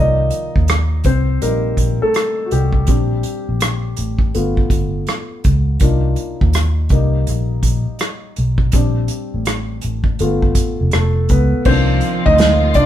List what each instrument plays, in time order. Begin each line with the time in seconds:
Already playing: fingered electric bass C2, grand piano D#3 F3 A#3 D#4 D5 D#5
0.30 closed hi-hat
0.56 fingered electric bass D#2, kick
0.68 cross-stick, closed hi-hat
1.04 fingered electric bass C2, grand piano C4 C5, kick, closed hi-hat
1.41 fingered electric bass A#1, grand piano G3 A#3 D#4 A#4, closed hi-hat
1.77 fingered electric bass A#1, kick, closed hi-hat
2.02 grand piano A3 A4
2.14 cross-stick, closed hi-hat
2.46 grand piano F#4
2.51 fingered electric bass C2, grand piano G3 G4, closed hi-hat
2.72 kick
2.87 fingered electric bass A#1, grand piano G3 C4 D4, kick, closed hi-hat
3.23 closed hi-hat
3.49 fingered electric bass A#1
3.60 cross-stick, closed hi-hat
3.96 fingered electric bass A1, closed hi-hat
4.19 kick
4.35 fingered electric bass G1, grand piano A3 B3 F4, closed hi-hat
4.57 kick
4.70 fingered electric bass G1, kick, closed hi-hat
5.07 cross-stick, closed hi-hat
5.44 fingered electric bass C#2, kick, closed hi-hat
5.80 fingered electric bass C2, grand piano A#3 D4 D#4 F4, kick, closed hi-hat
6.16 closed hi-hat
6.41 fingered electric bass D#2, kick
6.53 cross-stick, closed hi-hat
6.89 fingered electric bass C2, grand piano G3 A#3 D#4, kick, closed hi-hat
7.27 fingered electric bass A#1, closed hi-hat
7.63 fingered electric bass A#1, kick, closed hi-hat
7.99 cross-stick, closed hi-hat
8.36 fingered electric bass B1, closed hi-hat
8.58 kick
8.72 fingered electric bass A#1, grand piano G3 C4 D4, kick, closed hi-hat
9.08 closed hi-hat
9.34 fingered electric bass A1
9.45 cross-stick, closed hi-hat
9.81 fingered electric bass A1, closed hi-hat
10.04 kick
10.19 fingered electric bass G1, grand piano A3 B3 F4, closed hi-hat
10.42 kick
10.55 muted fingered electric bass stroke, kick, closed hi-hat
10.81 fingered electric bass F1
10.91 fingered electric bass F1, grand piano A3 A4, cross-stick, closed hi-hat
11.29 fingered electric bass C#2, grand piano B3 B4, kick, closed hi-hat
11.65 fingered electric bass C2, grand piano D#3 F3 A#3 C4 D4 C5, string section F3 A#3 C4 F4, kick, crash
12.01 closed hi-hat
12.26 fingered electric bass D2, grand piano D#4 D#5, kick
12.38 snare, closed hi-hat
12.74 fingered electric bass C2, string section D#3, grand piano D4 D5, kick, closed hi-hat